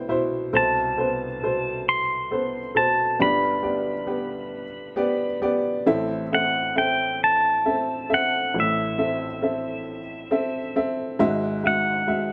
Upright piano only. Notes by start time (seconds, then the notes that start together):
Already playing: C2 C3 B3 E4 F#4 C5 D5 G5
0.09 B2 E4 C5 E5
0.53 C2 B2 C3 A4 C5
0.97 B3 A4 C5
1.42 B2 A4 C5
2.31 B3 A4 C5
2.75 B2 A4 C5
3.19 G1 G2 B3 G4 D5
3.63 B3 G4 D5
4.07 B3 G4 B4
4.96 B3 G4 D5
5.42 B3 G4 D5
5.86 A1 A2 C4 A4 E5
6.32 C4 A4 E5
6.75 C4 A4 E5
7.65 C4 A4 E5
8.10 C4 A4 E5
8.54 A1 A2
8.98 C4 A4 E5
9.42 C4 A4 E5
10.31 C4 A4 E5
10.76 C4 A4 E5
11.19 G#1 G#2 G#3 F#4 E5
11.64 G#3 F#4 E5
12.07 G#3 F#4 E5